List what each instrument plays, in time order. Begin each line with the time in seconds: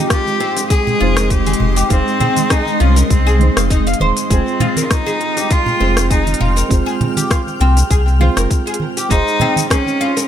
Already playing: felt piano G#3 C4 D#4 C5, ambient pad G#3 D#5 C6
0.10 oud F4, cello G4, kick, cross-stick, open hi-hat, shaker
0.27 high conga, shaker
0.40 oud C4, open hi-hat, high bongo
0.57 open hi-hat, high bongo, shaker
0.70 oud G#4, cello G#4, kick, open hi-hat, shaker
0.87 low conga, shaker
0.99 sub bass F1, felt piano G#3 C4 D#4, oud F4
1.03 felt piano C5
1.17 oud A#4, cross-stick, open hi-hat, high bongo, shaker
1.24 cello G#4
1.30 cello G4, kick, open hi-hat, shaker
1.46 oud G#4, open hi-hat, high bongo, high conga, shaker
1.53 open hi-hat
1.60 sub bass F1, low conga
1.76 oud G4, open hi-hat, shaker
1.89 sub bass F1, felt piano G#3 D#4, cello C4, oud F4, kick, open hi-hat, shaker
1.93 felt piano C5
2.08 shaker
2.20 oud C4, open hi-hat, high conga, low conga
2.36 open hi-hat, high conga, shaker
2.50 cello D#4, oud G#4, kick, cross-stick, open hi-hat, shaker
2.66 high conga, shaker
2.80 sub bass C2, cello C#4, oud F4, open hi-hat, high bongo
2.96 oud A#4, open hi-hat, high bongo, shaker
3.10 sub bass C2, cello C4, kick, open hi-hat, shaker
3.27 oud G#4, shaker
3.39 felt piano G#3 C4 D#4 G#4 C5, open hi-hat, high conga
3.57 sub bass F1, oud F5, cross-stick, open hi-hat, shaker
3.70 oud D#4, kick, open hi-hat, shaker
3.87 oud F5, open hi-hat, shaker
3.94 open hi-hat
4.00 sub bass D#1, oud C5, high conga
4.17 open hi-hat, shaker
4.29 sub bass F1, felt piano G#3 C4 F4 C5 G5, cello C4, oud G#4, ambient pad G5 F6, kick, open hi-hat, shaker
4.48 shaker
4.60 oud F4, open hi-hat, high conga, low conga
4.76 oud A#4, open hi-hat, high conga, shaker
4.85 cello F4
4.91 cello D#4, kick, cross-stick, open hi-hat, shaker
5.06 oud G#4, high conga, shaker
5.20 open hi-hat, high bongo
5.37 oud G4, open hi-hat, high bongo, shaker
5.51 oud F4, cello F4, kick, open hi-hat, shaker
5.66 low conga, shaker
5.79 sub bass F1, felt piano G#3 C4 F4 C5 G5, oud C4
5.97 cross-stick, open hi-hat, high bongo, shaker
6.11 cello D#4, oud G#4, kick, open hi-hat, shaker
6.26 open hi-hat, high bongo, high conga, shaker
6.34 open hi-hat
6.40 sub bass F1, oud F4, low conga
6.56 oud A#4, open hi-hat, shaker
6.68 sub bass F1, felt piano G#3 C4 F4 G5, kick, open hi-hat, shaker
6.72 felt piano C5
6.86 oud G#4, shaker
7.01 open hi-hat, high conga, low conga
7.17 oud G4, open hi-hat, high conga, shaker
7.31 oud F4, kick, cross-stick, open hi-hat, shaker
7.47 high conga, shaker
7.60 sub bass C2, oud C4, open hi-hat, high bongo
7.77 open hi-hat, high bongo, shaker
7.90 sub bass C2, oud G#4, kick, open hi-hat, shaker
8.08 shaker
8.19 felt piano G#3 C4 F4 C5 G5, oud F4, high conga
8.37 sub bass F1, oud A#4, cross-stick, open hi-hat, shaker
8.51 kick, open hi-hat, shaker
8.67 oud G#4, open hi-hat, shaker
8.74 open hi-hat
8.80 high conga
8.97 oud G4, open hi-hat, shaker
9.09 sub bass F1, felt piano G#3 D#4 G#4, cello D#4, oud F4, ambient pad C5 D#6, kick, open hi-hat, shaker
9.13 felt piano C5
9.28 shaker
9.40 oud C4, open hi-hat, high conga, low conga
9.56 open hi-hat, high conga, shaker
9.70 cello C#4, oud G#4, kick, cross-stick, open hi-hat, shaker
9.86 high conga, shaker
10.00 oud F4, open hi-hat, high bongo
10.17 oud A#4, open hi-hat, high bongo, shaker